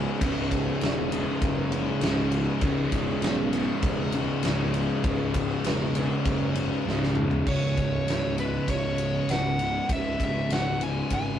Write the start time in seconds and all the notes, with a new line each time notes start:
Already playing: C#2 G#2 C#3
0.21 C#1 C#2 G#2 C#3, kick, ride
0.51 kick, ride
0.81 E1, snare, ride
1.11 C#2 G#2 C#3, ride
1.41 F#1, kick, ride
1.72 C#2 G#2 C#3, ride
2.00 C#1 C#2 G#2 C#3, snare, ride
2.32 ride
2.60 C#1 C#2 G#2 C#3, kick, ride
2.92 E1, kick, ride
3.22 B1, snare, ride
3.52 C#2 G#2 C#3, ride
3.82 E1, kick, ride
4.12 C#2 G#2 C#3, ride
4.43 C#1 C#2 G#2 C#3, snare, ride
4.74 snare, ride
5.03 C#1 C#2 G#2 C#3, kick, ride
5.34 kick, ride
5.64 E1, snare, ride
5.95 C#2 G#2 C#3, ride
6.25 F#1, kick, ride
6.55 C#2 G#2 C#3, ride
6.85 C#1 C#2 G#2 C#3, snare
7.03 snare
7.15 mid tom
7.31 floor tom
7.46 C#1 C#2 G#2 C#3 C#5, kick, crash
7.77 kick, ride
8.07 C#1, snare, ride
8.38 C#2 G#2 C#3 B4, ride
8.68 C#1 C#5, kick, ride
8.98 ride
9.27 C#1 F#5, snare, ride
9.59 C#2 G#2 C#3, ride
9.89 C#1 C#2 G#2 C#3 E5, kick, ride
10.20 C#1, kick, ride
10.24 E5
10.49 C#1 F#5, snare, ride
10.81 C#2 G#2 C#3 G#5, ride
11.10 G#1 G#5, kick, ride